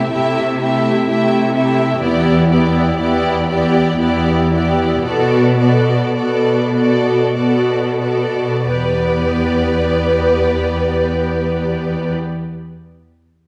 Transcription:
Already playing: viola section A3 E4, violin section G4 E5
0.11 cello section C3, viola section A3 E4, violin section G4 E5
0.60 viola section A3 E4, violin section G4 E5
1.07 cello section C3, viola section A3 E4, violin section G4 E5
1.55 viola section A3 E4, violin section G4 E5
2.02 cello section E2, viola section B3 E4, violin section G4 D5
2.51 viola section B3 E4, violin section G4 D5
3.00 cello section E2, viola section B3 E4, violin section G4 D5
3.49 viola section B3 E4, violin section G4 D5
4.00 cello section E2, viola section B3 E4, violin section G4 D5
4.52 viola section B3 E4, violin section G4 D5
5.05 cello section B2, viola section B3 F#4, violin section A4 D5
5.60 viola section B3 F#4, violin section A4 D5
6.17 cello section B2, viola section B3 F#4, violin section A4 D5
6.75 viola section B3 F#4, violin section A4 D5
7.36 cello section B2, viola section B3 F#4, violin section A4 D5
8.01 viola section B3 F#4, violin section A4 D5
8.66 cello section E2, viola section B3 G4, violin section B4 D5

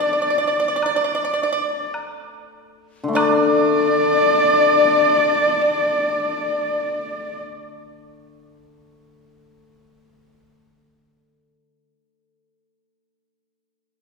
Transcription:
Already playing: bassoon D4, xiao D5, horsehead fiddle D5
0.01 pipa D5
0.13 pipa D5
0.22 pipa D5
0.30 pipa D5
0.38 pipa D5
0.47 pipa D5
0.60 pipa D5
0.68 pipa D5
0.76 pipa D5
0.82 pipa D5, high woodblock
0.96 pipa D5
1.04 pipa D5
1.15 pipa D5
1.25 pipa D5
1.34 pipa D5
1.43 pipa D5
1.52 pipa D5
1.94 high woodblock
3.04 hammered dulcimer D3
3.08 hammered dulcimer A3
3.13 hammered dulcimer D4, bassoon D4, xiao D5, pipa D5, horsehead fiddle D5, high woodblock

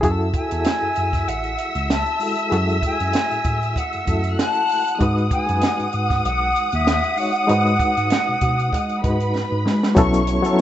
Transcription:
0.01 tine electric piano F#2, reed electric piano E4 F#4 G#4, string section E5 E6, kick, closed hi-hat
0.34 flute G#5, kick, closed hi-hat
0.49 tine electric piano E2, reed electric piano E4 F#4 G#4 A4, closed hi-hat
0.65 snare, closed hi-hat
0.82 tine electric piano F#2
0.96 tine electric piano F#2, closed hi-hat
1.13 kick, snare, closed hi-hat
1.28 tine electric piano A1, flute F#5, closed hi-hat
1.44 closed hi-hat
1.58 closed hi-hat
1.75 tine electric piano C#2, closed hi-hat
1.90 flute A5, snare, closed hi-hat
2.06 closed hi-hat
2.19 reed electric piano G#3 E4 F#4 A4, open hi-hat
2.39 closed hi-hat
2.50 tine electric piano F#2, reed electric piano E4 F#4 G#4 A4, closed hi-hat
2.70 closed hi-hat
2.82 flute G#5, kick, closed hi-hat
3.00 tine electric piano F#2, closed hi-hat
3.13 snare, closed hi-hat
3.31 tine electric piano A2, closed hi-hat
3.44 tine electric piano A2, kick, closed hi-hat
3.63 closed hi-hat
3.76 flute F#5, kick, closed hi-hat
3.93 tine electric piano F#2, closed hi-hat
4.05 tine electric piano F#2, reed electric piano A3 E4 F#4 A4, kick, closed hi-hat
4.24 closed hi-hat
4.38 string section F#5 F#6, flute A5, snare, closed hi-hat
4.69 open hi-hat
4.88 closed hi-hat
4.99 tine electric piano G#2, reed electric piano G#3 D#4 F#4 B4, string section F#5 D#6, kick, closed hi-hat
5.18 closed hi-hat
5.31 flute G#5, kick, closed hi-hat
5.46 tine electric piano F#2, reed electric piano G#3 D#4 F#4 B4, closed hi-hat
5.61 snare, closed hi-hat
5.80 tine electric piano G#2, closed hi-hat
5.93 tine electric piano G#2, closed hi-hat
6.10 kick, snare, closed hi-hat
6.25 tine electric piano B1, flute F#5, closed hi-hat
6.56 closed hi-hat
6.72 tine electric piano D#2, flute E5, closed hi-hat
6.87 snare, closed hi-hat
7.04 closed hi-hat
7.16 reed electric piano G#3 D#4 F#4 C#5, flute F#5, open hi-hat
7.36 closed hi-hat
7.47 tine electric piano G#2, reed electric piano G#3 D#4 F#4 B4, closed hi-hat
7.67 closed hi-hat
7.79 kick, closed hi-hat
7.97 tine electric piano G#2, closed hi-hat
8.10 snare, closed hi-hat
8.28 tine electric piano B2
8.41 tine electric piano B2, kick, closed hi-hat
8.59 closed hi-hat
8.73 tine electric piano G#3, kick, closed hi-hat
8.89 closed hi-hat
9.02 tine electric piano G#2, reed electric piano G#3 D#4 F#4 B4, string section B4 B5, kick, closed hi-hat
9.20 closed hi-hat
9.36 snare
9.52 tine electric piano G#2
9.66 tine electric piano G#3, snare
9.83 snare
9.95 tine electric piano B1, reed electric piano F#3 B3 C#4 E4 A4, string section C#5 C#6, kick, closed hi-hat, shaker
10.14 closed hi-hat, shaker
10.27 closed hi-hat, shaker
10.42 reed electric piano F#3 B3 C#4 E4 A4, closed hi-hat, shaker

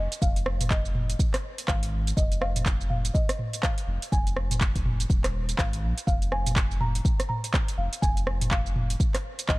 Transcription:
Already playing: marimba D#5
0.12 closed hi-hat, shaker
0.22 sub bass F1, marimba F5, kick, shaker
0.36 closed hi-hat, shaker
0.46 cross-stick
0.61 closed hi-hat, mid tom, shaker
0.70 marimba D#5, kick, clap, shaker
0.85 shaker
0.95 mid tom
1.10 closed hi-hat, shaker
1.19 kick, shaker
1.34 cross-stick, clap, closed hi-hat, shaker
1.58 closed hi-hat, shaker
1.68 sub bass G#1, marimba F5, kick, cross-stick, clap, shaker
1.83 closed hi-hat, shaker
2.07 closed hi-hat, shaker
2.17 sub bass F1, marimba D#5, kick, shaker
2.32 closed hi-hat, shaker
2.41 marimba F5, cross-stick
2.56 closed hi-hat, mid tom, shaker
2.66 kick, clap, shaker
2.81 shaker
2.90 marimba F5, mid tom
3.05 closed hi-hat, shaker
3.14 marimba D#5, kick, shaker
3.29 cross-stick, closed hi-hat, shaker
3.39 mid tom
3.53 closed hi-hat, shaker
3.63 marimba F5, kick, cross-stick, clap, shaker
3.78 closed hi-hat, shaker
3.88 sub bass F1
4.02 closed hi-hat, shaker
4.12 sub bass F1, marimba G#5, kick, shaker
4.27 closed hi-hat, shaker
4.36 cross-stick
4.51 closed hi-hat, mid tom, shaker
4.61 kick, clap, shaker
4.76 kick, closed hi-hat, shaker
4.85 mid tom
5.00 closed hi-hat, shaker
5.10 sub bass D#1, kick, shaker
5.24 cross-stick, clap, closed hi-hat, shaker
5.49 closed hi-hat, shaker
5.58 sub bass G#1, marimba F5, kick, cross-stick, clap, shaker
5.73 closed hi-hat, shaker
5.83 sub bass A#1
5.98 closed hi-hat, shaker
6.07 sub bass F1, marimba F5, kick, shaker
6.22 closed hi-hat, shaker
6.32 marimba G#5, cross-stick
6.46 closed hi-hat, mid tom, shaker
6.56 kick, clap, shaker
6.71 shaker
6.80 marimba A#5, mid tom
6.95 closed hi-hat, shaker
7.05 kick, shaker
7.20 cross-stick, closed hi-hat, shaker
7.29 marimba A#5, mid tom
7.44 closed hi-hat, shaker
7.54 kick, cross-stick, clap, shaker
7.68 closed hi-hat, shaker
7.78 sub bass F1, marimba F5
7.93 closed hi-hat, shaker
8.02 sub bass F1, marimba G#5, kick, shaker
8.17 closed hi-hat, shaker
8.27 cross-stick
8.41 closed hi-hat, mid tom, shaker
8.51 marimba F5, kick, clap, shaker
8.66 shaker
8.76 mid tom
8.90 closed hi-hat, shaker
9.00 kick, shaker
9.15 cross-stick, clap, closed hi-hat, shaker
9.39 closed hi-hat, shaker
9.48 sub bass G#1, marimba D#5, kick, cross-stick, clap, shaker

